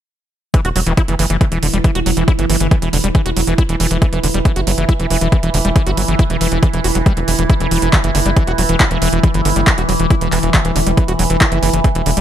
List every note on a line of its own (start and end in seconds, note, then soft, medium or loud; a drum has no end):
0.54 0.61 E3 medium
0.54 12.21 E3 medium
0.54 12.21 E4 medium
0.54 kick loud
0.54 closed hi-hat medium
0.65 0.72 E1 medium
0.65 0.69 F#4 medium
0.65 closed hi-hat medium
0.76 0.83 E1 loud
0.76 0.80 F#3 medium
0.76 open hi-hat loud
0.87 0.94 E1 medium
0.87 0.93 E3 loud
0.87 closed hi-hat medium
0.92 12.21 B4 medium
0.97 1.02 E4 loud
0.97 kick loud
0.97 closed hi-hat medium
1.08 1.16 F#1 medium
1.08 1.15 E3 loud
1.08 closed hi-hat medium
1.19 1.26 F#1 loud
1.19 1.26 E3 loud
1.19 open hi-hat loud
1.30 1.37 F#1 medium
1.30 1.37 E3 medium
1.30 closed hi-hat medium
1.39 1.45 E3 loud
1.39 12.21 B5 medium
1.39 kick loud
1.39 closed hi-hat medium
1.52 1.59 E1 medium
1.52 1.58 E3 medium
1.52 closed hi-hat medium
1.63 1.70 E1 loud
1.63 1.67 D3 medium
1.63 open hi-hat loud
1.73 1.81 E1 medium
1.73 1.78 G3 loud
1.73 closed hi-hat medium
1.84 1.91 E3 medium
1.84 kick loud
1.84 closed hi-hat medium
1.95 2.02 E1 medium
1.95 2.00 F#4 medium
1.95 closed hi-hat medium
2.06 2.13 E1 loud
2.06 2.11 F#3 medium
2.06 open hi-hat loud
2.17 2.24 E1 medium
2.17 2.24 E3 loud
2.17 closed hi-hat medium
2.28 2.32 E4 loud
2.28 kick loud
2.28 closed hi-hat medium
2.39 2.46 G1 medium
2.39 2.45 E3 loud
2.39 closed hi-hat medium
2.50 2.57 G1 loud
2.50 2.56 E3 loud
2.50 open hi-hat loud
2.60 2.68 G1 medium
2.60 2.67 E3 medium
2.60 closed hi-hat medium
2.71 2.76 E3 loud
2.71 kick loud
2.71 closed hi-hat medium
2.82 2.89 E1 medium
2.82 2.89 E3 medium
2.82 closed hi-hat medium
2.93 3.00 E1 loud
2.93 2.98 D3 medium
2.93 open hi-hat loud
3.04 3.11 E1 loud
3.04 3.08 G3 loud
3.04 closed hi-hat medium
3.15 3.21 E3 medium
3.15 kick loud
3.15 closed hi-hat medium
3.26 3.33 E1 medium
3.26 3.30 F#4 medium
3.26 closed hi-hat medium
3.37 3.44 E1 loud
3.37 3.41 F#3 medium
3.37 open hi-hat loud
3.47 3.55 E1 medium
3.47 3.54 E3 loud
3.47 closed hi-hat medium
3.58 3.63 E4 loud
3.58 kick loud
3.58 closed hi-hat medium
3.69 3.76 E1 medium
3.69 3.76 E3 loud
3.69 closed hi-hat medium
3.80 3.87 E1 loud
3.80 3.87 E3 loud
3.80 open hi-hat loud
3.91 3.98 E1 medium
3.91 3.98 E3 medium
3.91 closed hi-hat medium
4.02 4.06 E3 loud
4.02 kick loud
4.02 closed hi-hat medium
4.13 4.20 E1 medium
4.13 4.19 E3 medium
4.13 closed hi-hat medium
4.24 4.31 E1 loud
4.24 4.28 D3 medium
4.24 open hi-hat loud
4.34 4.42 E1 medium
4.34 4.39 G3 loud
4.34 closed hi-hat medium
4.45 4.52 E3 medium
4.45 kick loud
4.45 closed hi-hat medium
4.56 4.63 F#1 medium
4.56 4.61 F#4 medium
4.56 closed hi-hat medium
4.67 4.74 F#1 loud
4.67 4.71 F#3 medium
4.67 open hi-hat loud
4.78 4.85 F#1 loud
4.78 4.85 E3 loud
4.78 closed hi-hat medium
4.89 4.93 E4 loud
4.89 kick loud
4.89 closed hi-hat medium
5.00 5.07 E1 medium
5.00 5.06 E3 loud
5.00 closed hi-hat medium
5.10 5.18 E1 medium
5.10 5.17 E3 loud
5.10 open hi-hat loud
5.21 5.29 E1 medium
5.21 5.28 E3 medium
5.21 closed hi-hat medium
5.32 5.37 E3 loud
5.32 kick loud
5.32 closed hi-hat medium
5.43 5.50 E1 medium
5.43 5.50 E3 medium
5.43 closed hi-hat medium
5.54 5.61 E1 loud
5.54 5.58 D3 medium
5.54 open hi-hat loud
5.65 5.72 E1 medium
5.65 5.69 G3 loud
5.65 closed hi-hat medium
5.76 5.82 E3 medium
5.76 kick loud
5.76 closed hi-hat medium
5.87 5.94 G1 medium
5.87 5.91 F#4 medium
5.87 closed hi-hat medium
5.97 6.05 G1 loud
5.97 6.02 F#3 medium
5.97 open hi-hat loud
6.08 6.16 G1 medium
6.08 6.15 E3 loud
6.08 closed hi-hat medium
6.19 6.24 E4 loud
6.19 kick loud
6.19 closed hi-hat medium
6.30 6.37 E1 medium
6.30 6.37 E3 loud
6.30 closed hi-hat medium
6.41 6.48 E1 loud
6.41 6.48 E3 loud
6.41 open hi-hat loud
6.52 6.59 E1 loud
6.52 6.58 E3 medium
6.52 closed hi-hat medium
6.63 6.67 E3 loud
6.63 kick loud
6.63 closed hi-hat medium
6.73 6.81 E1 medium
6.73 6.80 E3 medium
6.73 closed hi-hat medium
6.84 6.92 E1 loud
6.84 6.87 F#4 medium
6.84 open hi-hat loud
6.95 7.02 E1 medium
6.95 6.98 F#3 medium
6.95 closed hi-hat medium
7.06 7.13 G3 medium
7.06 kick loud
7.06 closed hi-hat medium
7.17 7.24 E1 medium
7.17 7.20 E3 medium
7.17 closed hi-hat medium
7.28 7.35 E1 loud
7.28 7.31 E3 medium
7.28 open hi-hat loud
7.39 7.46 E1 medium
7.39 7.43 E3 medium
7.39 closed hi-hat medium
7.50 7.54 E4 loud
7.50 kick loud
7.50 closed hi-hat medium
7.60 7.68 E1 medium
7.60 7.67 E3 loud
7.60 closed hi-hat medium
7.71 7.79 E1 loud
7.71 7.78 E3 loud
7.71 open hi-hat loud
7.82 7.89 E1 loud
7.82 7.89 E3 medium
7.82 closed hi-hat medium
7.93 7.98 E3 loud
7.93 kick loud
7.93 clap loud
7.93 closed hi-hat medium
8.04 8.11 F#1 medium
8.04 8.11 E3 medium
8.04 closed hi-hat medium
8.15 8.22 F#1 loud
8.15 8.19 D3 medium
8.15 open hi-hat loud
8.26 8.33 F#1 loud
8.26 8.30 G3 loud
8.26 closed hi-hat medium
8.37 8.43 E3 medium
8.37 kick loud
8.37 closed hi-hat medium
8.47 8.55 E1 medium
8.47 8.52 F#4 medium
8.47 closed hi-hat medium
8.58 8.66 E1 loud
8.58 8.63 F#3 medium
8.58 open hi-hat loud
8.69 8.76 E1 medium
8.69 8.76 E3 loud
8.69 closed hi-hat medium
8.80 8.84 E4 loud
8.80 kick loud
8.80 clap loud
8.80 closed hi-hat medium
8.91 8.98 E1 medium
8.91 8.98 E3 loud
8.91 closed hi-hat medium
9.02 9.09 E1 loud
9.02 9.08 E3 loud
9.02 open hi-hat loud
9.13 9.20 E1 medium
9.13 9.19 E3 medium
9.13 closed hi-hat medium
9.23 9.28 E3 loud
9.23 kick loud
9.23 closed hi-hat medium
9.34 9.42 G1 medium
9.34 9.41 E3 medium
9.34 closed hi-hat medium
9.45 9.52 G1 loud
9.45 9.50 D3 medium
9.45 open hi-hat loud
9.56 9.63 G1 medium
9.56 9.61 G3 loud
9.56 closed hi-hat medium
9.67 9.74 E3 medium
9.67 kick loud
9.67 clap loud
9.67 closed hi-hat medium
9.78 9.85 E1 medium
9.78 9.82 F#4 medium
9.78 closed hi-hat medium
9.89 9.96 E1 loud
9.89 9.93 F#3 medium
9.89 open hi-hat loud
10.00 10.07 E1 medium
10.00 10.06 E3 loud
10.00 closed hi-hat medium
10.10 10.15 E4 loud
10.10 kick loud
10.10 closed hi-hat medium
10.21 10.29 E1 medium
10.21 10.28 E3 loud
10.21 closed hi-hat medium
10.32 10.39 E1 loud
10.32 10.39 E3 loud
10.32 clap medium
10.32 open hi-hat loud
10.43 10.50 E1 loud
10.43 10.50 E3 medium
10.43 closed hi-hat medium
10.54 10.58 E3 loud
10.54 kick loud
10.54 clap loud
10.54 closed hi-hat medium
10.65 10.72 E1 medium
10.65 10.71 E3 medium
10.65 closed hi-hat medium
10.76 10.83 E1 loud
10.76 10.80 D3 medium
10.76 open hi-hat loud
10.86 10.94 E1 medium
10.86 10.91 G3 loud
10.86 closed hi-hat medium
10.97 11.04 E3 medium
10.97 kick loud
10.97 closed hi-hat medium
11.08 11.16 E1 medium
11.08 11.13 F#4 medium
11.08 closed hi-hat medium
11.19 11.26 E1 loud
11.19 11.24 F#3 medium
11.19 open hi-hat loud
11.30 11.37 E1 medium
11.30 11.37 E3 loud
11.30 closed hi-hat medium
11.41 11.45 E4 loud
11.41 kick loud
11.41 clap loud
11.41 closed hi-hat medium
11.52 11.59 F#1 medium
11.52 11.58 E3 loud
11.52 closed hi-hat medium
11.63 11.70 F#1 loud
11.63 11.69 E3 loud
11.63 open hi-hat loud
11.73 11.81 F#1 loud
11.73 11.80 E3 medium
11.73 closed hi-hat medium
11.84 11.89 E3 loud
11.84 kick loud
11.84 closed hi-hat medium
11.95 12.02 E1 medium
11.95 12.02 E3 medium
11.95 closed hi-hat medium
12.06 12.13 E1 loud
12.06 12.11 D3 medium
12.06 open hi-hat loud
12.17 12.21 E1 medium
12.17 12.21 G3 loud
12.17 closed hi-hat medium